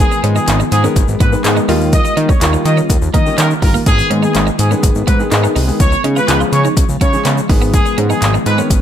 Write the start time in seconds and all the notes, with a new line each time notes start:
Already playing: D#3 G#3 B3 G#4
0.00 G#4, shaker
0.12 muted clean electric guitar stroke, shaker
0.24 G#2 C#4, closed hi-hat
0.36 D#4 G#4, shaker
0.48 G#1, clap, closed hi-hat, shaker
0.60 D#4, shaker
0.72 G#2 G#4, muted clean electric guitar stroke, closed hi-hat, shaker
0.84 D#3 G#3 B3 C#4 A#4, shaker
0.96 G#1, kick, closed hi-hat, shaker
1.08 G#1, shaker
1.20 G#2 B3 B4, kick, closed hi-hat, shaker
1.32 D#3 G#3 B3 B4, shaker
1.44 G#2 D#3 G#3 B3 G#4, muted clean electric guitar stroke, clap, closed hi-hat, shaker
1.57 D#4, shaker
1.68 D#2 D#3 G3 A#3 D#4 F4, open hi-hat, shaker
1.81 shaker
1.93 D#5, kick, closed hi-hat, shaker
2.05 muted clean electric guitar stroke, shaker
2.17 D#3 D#4, closed hi-hat
2.29 C#4 C#5, kick, shaker
2.41 D#2 D#3 G3 A#3 F4, clap, closed hi-hat, shaker
2.53 D#4, shaker
2.65 D#3 D#5, muted clean electric guitar stroke, closed hi-hat, shaker
2.77 C#4, shaker
2.90 D#2, kick, closed hi-hat, shaker
3.02 D#2, shaker
3.14 D#3 A#3 D#5, kick, closed hi-hat, shaker
3.26 D#3 G3 A#3 C#4, shaker
3.38 D#3 C#4 A#4, clap, closed hi-hat, shaker
3.50 shaker
3.62 G1 D#3 G3 A#3 F4 A#4, muted clean electric guitar stroke, kick, open hi-hat, shaker
3.74 A#3, shaker
3.86 G#1 D#3 G#3 B3 G#4, kick, closed hi-hat, shaker
3.98 muted clean electric guitar stroke, shaker
4.11 G#2 C#4, closed hi-hat
4.23 D#4 G#4, shaker
4.35 G#1, clap, closed hi-hat, shaker
4.47 D#4, shaker
4.59 G#2 G#4, muted clean electric guitar stroke, closed hi-hat, shaker
4.71 D#3 G#3 B3 C#4 G#4, shaker
4.83 G#1, kick, closed hi-hat, shaker
4.95 G#1, shaker
5.07 G#2 B3 B4, kick, closed hi-hat, shaker
5.19 D#3 G#3 B3 G#4, shaker
5.31 G#2 D#3 G#3 B3 G#4, muted clean electric guitar stroke, clap, closed hi-hat, shaker
5.44 D#4, shaker
5.56 C2 D#4, open hi-hat, shaker
5.68 D#3 G#3 B3 G#4, shaker
5.80 C#2 C#3 F3 F4 C#5, kick, closed hi-hat, shaker
5.92 muted clean electric guitar stroke, shaker
6.04 C#3 D#4, closed hi-hat
6.16 F4 B4, shaker
6.28 C#2 F3 G#3 C#4 G#4, clap, closed hi-hat, shaker
6.40 F4, shaker
6.52 C#3 C#5, muted clean electric guitar stroke, closed hi-hat, shaker
6.65 D#4, shaker
6.77 C#2, kick, closed hi-hat, shaker
6.89 C#2, shaker
7.01 C#3 C#4 C#5, kick, closed hi-hat, shaker
7.13 F3 G#3 C#4 G#4, shaker
7.25 C#3 B3, clap, closed hi-hat, shaker
7.38 shaker
7.49 G#1 D#3 G#3 B3 G#4, muted clean electric guitar stroke, kick, open hi-hat, shaker
7.62 B3, shaker
7.74 G#4, kick, closed hi-hat, shaker
7.86 muted clean electric guitar stroke, shaker
7.98 G#2 C#4, closed hi-hat
8.10 D#4 G#4, shaker
8.22 G#1, clap, closed hi-hat, shaker
8.34 D#4, shaker
8.46 G#2 B4, muted clean electric guitar stroke, closed hi-hat, shaker
8.58 D#3 G#3 B3 C#4, shaker
8.70 G#1, kick, closed hi-hat, shaker